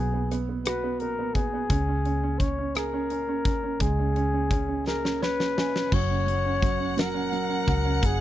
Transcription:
0.00 1.66 B1 medium
0.00 1.66 F#3 medium
0.00 0.14 B3 medium
0.00 0.62 F#4 medium
0.00 0.38 G#4 medium
0.14 0.30 B3 soft
0.31 0.48 B3 medium
0.31 cross-stick soft
0.31 closed hi-hat soft
0.49 0.82 B3 soft
0.65 1.68 F#4 medium
0.65 1.01 B4 medium
0.65 cross-stick loud
0.65 closed hi-hat medium
0.84 1.00 B3 medium
1.00 1.18 B3 soft
1.00 1.36 A#4 medium
1.00 closed hi-hat soft
1.19 1.35 B3 medium
1.34 1.52 B3 soft
1.34 2.41 G#4 medium
1.34 kick medium
1.34 closed hi-hat soft
1.54 1.70 B3 soft
1.70 3.76 C#2 medium
1.70 1.87 C#4 medium
1.70 kick loud
1.70 closed hi-hat medium
1.89 2.04 C#4 medium
2.05 2.22 C#4 medium
2.05 closed hi-hat soft
2.23 2.40 C#4 medium
2.39 2.57 C#4 medium
2.39 2.77 C#5 medium
2.39 kick medium
2.39 closed hi-hat medium
2.59 2.92 C#4 medium
2.75 4.82 G#4 medium
2.75 3.83 A#4 medium
2.75 cross-stick loud
2.75 closed hi-hat medium
2.94 3.10 C#4 medium
3.10 3.27 C#4 soft
3.10 closed hi-hat soft
3.29 3.45 C#4 medium
3.45 3.62 C#4 medium
3.45 kick loud
3.45 closed hi-hat soft
3.63 3.97 C#4 soft
3.80 5.88 C#2 loud
3.80 5.88 G#3 medium
3.80 4.86 G#4 medium
3.80 kick loud
3.80 closed hi-hat medium
3.99 4.14 C#4 soft
4.16 4.32 C#4 medium
4.16 closed hi-hat soft
4.34 4.50 C#4 soft
4.51 4.67 C#4 medium
4.51 kick loud
4.51 cross-stick soft
4.51 closed hi-hat medium
4.68 5.03 C#4 soft
4.87 5.89 G#4 medium
4.87 5.19 A#4 medium
4.87 snare medium
5.05 5.21 C#4 medium
5.05 snare medium
5.22 5.39 C#4 soft
5.22 5.95 B4 loud
5.22 5.55 C#5 medium
5.22 snare medium
5.40 5.57 C#4 soft
5.40 snare medium
5.58 5.74 C#4 medium
5.58 5.90 G#5 medium
5.58 snare medium
5.76 5.92 C#4 medium
5.76 snare medium
5.92 7.64 F#1 medium
5.92 6.25 F#3 medium
5.92 7.01 C#5 loud
5.92 8.21 F#5 loud
5.92 kick loud
5.92 crash loud
6.10 6.44 C#4 soft
6.27 6.61 F#3 soft
6.27 closed hi-hat medium
6.45 6.78 C#4 medium
6.62 6.96 F#3 medium
6.62 kick loud
6.62 closed hi-hat medium
6.80 7.13 C#4 medium
6.97 7.31 F#3 medium
6.97 8.07 A#4 loud
6.97 snare loud
6.97 closed hi-hat medium
7.14 7.48 C#4 medium
7.32 7.66 F#3 medium
7.32 closed hi-hat soft
7.50 7.83 C#4 medium
7.67 8.01 C#2 medium
7.67 8.21 F#3 medium
7.67 kick loud
7.67 closed hi-hat soft
7.85 8.17 C#4 medium
8.02 8.21 F#1 loud
8.02 8.21 C#3 medium
8.02 8.21 G#4 loud
8.02 kick loud
8.02 closed hi-hat medium

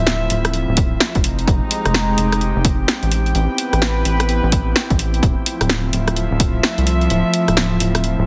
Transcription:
0.00 0.29 D1 loud
0.00 2.00 F3 medium
0.00 1.21 A3 medium
0.00 8.26 C4 medium
0.00 1.21 E4 medium
0.00 1.21 F4 medium
0.00 1.24 E5 medium
0.07 snare loud
0.30 0.66 D1 medium
0.30 open hi-hat medium
0.45 cross-stick medium
0.45 closed hi-hat medium
0.54 closed hi-hat medium
0.68 0.99 D1 loud
0.77 kick loud
0.77 open hi-hat loud
1.00 snare loud
1.00 closed hi-hat medium
1.15 1.46 F1 medium
1.15 kick loud
1.15 closed hi-hat soft
1.24 3.10 G#3 medium
1.24 3.10 D#4 medium
1.24 3.12 D#4 medium
1.24 5.19 G4 medium
1.24 open hi-hat medium
1.39 closed hi-hat soft
1.47 1.61 F1 loud
1.47 3.12 G#3 medium
1.47 kick loud
1.47 closed hi-hat medium
1.71 open hi-hat loud
1.85 2.16 F1 medium
1.85 cross-stick medium
1.85 closed hi-hat medium
1.94 6.39 G5 medium
1.94 snare loud
2.18 2.53 F1 medium
2.18 open hi-hat medium
2.32 cross-stick medium
2.32 closed hi-hat medium
2.41 closed hi-hat medium
2.56 2.87 F1 loud
2.65 kick loud
2.65 open hi-hat loud
2.88 snare loud
2.88 closed hi-hat medium
3.03 3.33 A1 medium
3.03 closed hi-hat soft
3.11 5.20 B3 medium
3.11 8.26 E4 medium
3.11 open hi-hat medium
3.26 closed hi-hat soft
3.35 3.48 A1 loud
3.35 closed hi-hat medium
3.40 5.23 B4 medium
3.58 open hi-hat loud
3.73 4.04 A1 medium
3.73 cross-stick medium
3.73 closed hi-hat medium
3.82 snare loud
4.05 4.41 A1 medium
4.05 open hi-hat medium
4.20 cross-stick medium
4.20 closed hi-hat medium
4.29 closed hi-hat medium
4.43 4.74 A1 loud
4.52 kick loud
4.52 open hi-hat loud
4.76 snare loud
4.76 closed hi-hat medium
4.90 5.21 A1 medium
4.90 kick loud
4.90 closed hi-hat medium
4.99 open hi-hat medium
5.14 closed hi-hat soft
5.22 5.36 D1 medium
5.22 8.26 A3 medium
5.22 8.26 F4 medium
5.22 kick loud
5.22 closed hi-hat medium
5.46 8.26 F3 medium
5.46 open hi-hat loud
5.61 5.91 D1 loud
5.61 cross-stick medium
5.61 closed hi-hat medium
5.70 snare loud
5.91 6.28 D1 medium
5.91 8.26 E5 medium
5.91 open hi-hat medium
6.08 cross-stick medium
6.08 closed hi-hat medium
6.16 closed hi-hat medium
6.31 6.62 D1 loud
6.40 kick loud
6.40 open hi-hat loud
6.63 snare loud
6.63 closed hi-hat medium
6.78 7.09 C2 medium
6.78 closed hi-hat medium
6.87 open hi-hat medium
7.01 closed hi-hat soft
7.10 7.23 D1 loud
7.10 closed hi-hat medium
7.34 open hi-hat loud
7.48 7.79 D1 medium
7.48 cross-stick medium
7.48 closed hi-hat medium
7.57 snare loud
7.80 8.16 D1 medium
7.80 open hi-hat medium
7.95 cross-stick medium
7.95 closed hi-hat medium
8.04 closed hi-hat medium
8.18 8.26 D1 loud

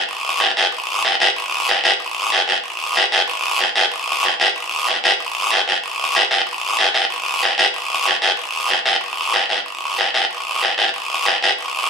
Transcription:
0.09 long guiro medium
0.40 short guiro medium
0.57 short guiro medium
0.72 long guiro medium
1.05 short guiro medium
1.20 short guiro medium
1.36 long guiro medium
1.69 short guiro medium
1.84 short guiro medium
2.00 long guiro medium
2.32 short guiro medium
2.48 short guiro medium
2.64 long guiro medium
2.96 short guiro medium
3.12 short guiro medium
3.28 long guiro medium
3.59 short guiro medium
3.75 short guiro medium
3.92 long guiro medium
4.24 short guiro medium
4.40 short guiro medium
4.56 long guiro medium
4.88 short guiro medium
5.04 short guiro medium
5.20 long guiro medium
5.51 short guiro medium
5.68 short guiro medium
5.84 long guiro medium
6.15 short guiro medium
6.31 short guiro medium
6.47 long guiro medium
6.79 short guiro medium
6.94 short guiro medium
7.10 long guiro medium
7.43 short guiro medium
7.58 short guiro medium
7.74 long guiro medium
8.06 short guiro medium
8.22 short guiro medium
8.37 long guiro medium
8.69 short guiro medium
8.86 short guiro medium
9.01 long guiro medium
9.33 short guiro medium
9.49 short guiro medium
9.66 long guiro medium
9.98 short guiro medium
10.14 short guiro medium
10.31 long guiro medium
10.62 short guiro medium
10.78 short guiro medium
10.94 long guiro medium
11.26 short guiro medium
11.42 short guiro medium
11.58 long guiro medium

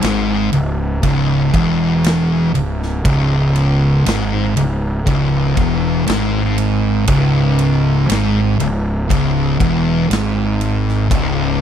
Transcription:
0.01 0.50 G#1 medium
0.01 0.51 G#2 loud
0.01 snare loud
0.01 ride loud
0.52 1.00 C#1 medium
0.52 0.93 C#2 medium
0.52 ride medium
1.03 1.50 C#1 medium
1.03 1.52 C#2 loud
1.03 kick loud
1.03 ride medium
1.53 2.51 E1 medium
1.53 2.53 E2 loud
1.53 kick loud
1.53 ride medium
2.04 snare loud
2.04 ride medium
2.54 3.02 C#1 medium
2.54 2.95 C#2 medium
2.54 ride medium
2.83 snare soft
3.05 4.02 C#1 loud
3.05 4.04 C#2 loud
3.05 kick loud
3.05 ride loud
3.56 ride medium
4.06 4.53 G#1 medium
4.06 4.55 G#2 loud
4.06 snare loud
4.06 ride loud
4.56 5.04 C#1 medium
4.56 4.97 C#2 medium
4.56 ride medium
5.06 5.54 C#1 loud
5.06 5.55 C#2 loud
5.06 kick loud
5.06 ride loud
5.57 6.04 E1 medium
5.57 6.06 E2 loud
5.57 kick loud
5.57 ride medium
6.06 7.05 G#1 medium
6.06 7.06 G#2 loud
6.06 snare loud
6.06 ride loud
6.58 ride medium
7.07 8.05 C#1 loud
7.07 8.07 C#2 loud
7.07 kick loud
7.07 ride loud
7.59 ride medium
8.09 8.56 G#1 medium
8.09 8.58 G#2 loud
8.09 snare loud
8.09 ride loud
8.60 9.06 C#1 medium
8.60 9.00 C#2 medium
8.60 ride medium
9.09 9.57 C#1 medium
9.09 9.58 C#2 loud
9.09 kick loud
9.09 ride medium
9.59 10.07 E1 medium
9.59 10.08 E2 loud
9.59 kick loud
9.59 ride medium
10.10 11.07 G#1 medium
10.10 11.09 G#2 loud
10.10 snare loud
10.10 ride loud
10.61 ride medium
10.89 snare soft
11.10 11.61 C#1 loud
11.10 11.61 C#2 medium
11.10 kick loud
11.10 ride medium

